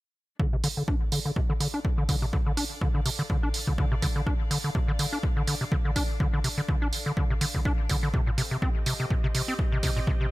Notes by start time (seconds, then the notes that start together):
0.39 D3 D4, kick
0.53 C3
0.57 A4
0.64 D3 D5, open hi-hat
0.77 D3
0.88 D4, kick
1.12 D3 F5, open hi-hat
1.25 D3
1.36 C3, kick
1.50 D3
1.60 D3, open hi-hat
1.74 D4
1.85 kick
1.98 D3
2.09 D3, kick, open hi-hat
2.22 C3
2.33 D3, kick
2.46 D3
2.57 D4, open hi-hat
2.81 D3, kick
2.95 D3
3.06 C3, open hi-hat
3.19 D3
3.30 D3, kick
3.43 D4
3.54 open hi-hat
3.67 D3, kick
3.78 D3, kick
3.92 C3
4.02 D3, kick, open hi-hat
4.16 D3
4.26 D4, kick
4.51 D3, open hi-hat
4.64 D3
4.75 C3, kick
4.88 D3
4.99 D3, open hi-hat
5.13 D4
5.23 kick
5.37 D3
5.47 D3, open hi-hat
5.61 C3
5.72 D3, kick
5.85 D3
5.96 D4, kick, open hi-hat
6.20 D3, kick
6.34 D3
6.44 C3, open hi-hat
6.58 D3
6.68 D3, kick
6.82 D4
6.93 open hi-hat
7.06 D3
7.17 D3, kick
7.30 C3
7.41 D3, open hi-hat
7.55 D3, kick
7.65 D4, kick
7.89 D3, kick, open hi-hat
8.03 D3
8.14 C3 C4, kick
8.27 A#2
8.38 C3, open hi-hat
8.44 G4
8.49 C3 D#5
8.62 C4, kick
8.86 C3, open hi-hat
9.00 C3
9.10 A#2, kick
9.24 C3
9.35 C3, open hi-hat
9.48 C4
9.59 kick
9.72 C3
9.83 C3, kick, open hi-hat
9.96 A#2
10.07 C3, kick
10.21 C3